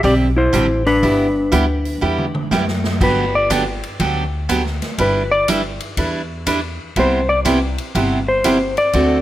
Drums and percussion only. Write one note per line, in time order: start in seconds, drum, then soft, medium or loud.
0.04 kick soft
0.04 open hi-hat soft
0.53 closed hi-hat medium
0.86 open hi-hat soft
1.03 kick soft
1.03 open hi-hat soft
1.52 closed hi-hat medium
1.85 open hi-hat soft
2.18 mid tom medium
2.34 mid tom medium
2.51 snare medium
2.68 snare medium
2.84 snare medium
3.01 kick medium
3.01 crash medium
3.50 kick soft
3.50 hi-hat pedal medium
3.50 ride medium
3.83 ride soft
4.00 kick soft
4.00 ride medium
4.49 kick soft
4.49 hi-hat pedal medium
4.49 ride medium
4.66 snare soft
4.82 snare soft
4.82 ride soft
4.98 kick soft
4.98 ride medium
5.48 kick soft
5.48 hi-hat pedal medium
5.48 ride medium
5.80 ride medium
5.97 kick soft
5.97 ride medium
6.47 kick soft
6.47 hi-hat pedal medium
6.47 ride medium
6.96 kick soft
6.96 ride medium
7.45 kick soft
7.45 hi-hat pedal medium
7.45 ride medium
7.78 ride soft
7.95 kick soft
7.95 ride medium
8.44 kick soft
8.44 hi-hat pedal medium
8.44 ride medium
8.77 ride soft
8.93 kick soft
8.93 ride medium